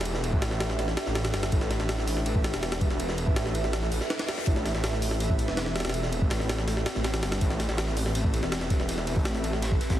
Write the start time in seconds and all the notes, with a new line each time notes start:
Already playing: E1
0.01 snare, ride
0.05 ride
0.15 snare
0.24 ride
0.33 A1, kick
0.42 snare, ride
0.51 snare
0.60 snare, ride
0.70 snare
0.79 snare, ride
0.88 snare
0.97 snare, ride
1.06 A1, snare
1.15 snare, ride
1.25 snare, ride
1.34 G1, snare, ride
1.43 snare, ride
1.52 A1, kick, ride
1.61 snare
1.71 snare, ride
1.80 A1, snare
1.89 snare, ride
1.98 snare
2.08 open hi-hat
2.17 snare
2.26 ride
2.35 kick
2.44 snare, ride
2.54 E1, snare, ride
2.63 snare, ride
2.72 snare, ride
2.81 kick, ride
2.90 E1, snare
3.00 ride
3.09 snare
3.18 ride
3.27 A1, kick
3.36 snare, ride
3.46 snare
3.55 ride
3.64 snare
3.73 snare, ride, reverse cymbal
3.83 snare
3.92 A1, open hi-hat
4.01 snare
4.10 snare, ride
4.19 snare, ride
4.29 snare, ride
4.38 snare
4.47 A1, kick, closed hi-hat, ride
4.56 snare
4.66 snare, closed hi-hat, ride
4.74 A1, snare
4.84 snare, closed hi-hat, ride
4.93 snare
5.02 closed hi-hat, open hi-hat
5.11 snare, closed hi-hat
5.20 closed hi-hat, ride
5.30 kick
5.39 closed hi-hat, ride
5.48 E1, snare
5.57 snare, closed hi-hat, ride
5.66 snare
5.76 snare, closed hi-hat, ride
5.80 snare, ride
5.85 E1, snare, ride
5.89 snare, ride
5.94 closed hi-hat, ride
6.03 snare
6.12 ride
6.22 A1, kick
6.30 snare, closed hi-hat, ride
6.40 snare, closed hi-hat
6.49 snare, closed hi-hat, ride
6.58 snare
6.68 snare, closed hi-hat, ride
6.77 snare
6.86 snare, closed hi-hat, ride
6.95 A1, snare
7.04 snare, closed hi-hat, ride
7.14 snare, ride
7.23 G1, snare, closed hi-hat, ride
7.32 snare, ride
7.41 A1, kick, closed hi-hat, ride
7.50 snare
7.60 snare, closed hi-hat, ride
7.68 A1, snare
7.77 snare, closed hi-hat, ride
7.87 snare
7.97 closed hi-hat, open hi-hat
8.05 snare, closed hi-hat
8.15 closed hi-hat, ride
8.24 kick
8.34 closed hi-hat, ride
8.43 E1, snare
8.52 snare, closed hi-hat, ride
8.61 snare
8.70 kick, snare, closed hi-hat, ride
8.79 E1, snare
8.89 closed hi-hat, ride
8.98 snare
9.07 open hi-hat, ride
9.16 A1, kick
9.25 snare, closed hi-hat, ride
9.35 snare, closed hi-hat
9.44 closed hi-hat, ride
9.53 snare
9.62 snare, closed hi-hat, ride
9.72 kick
9.81 snare, closed hi-hat, ride
9.90 A1, kick, snare, closed hi-hat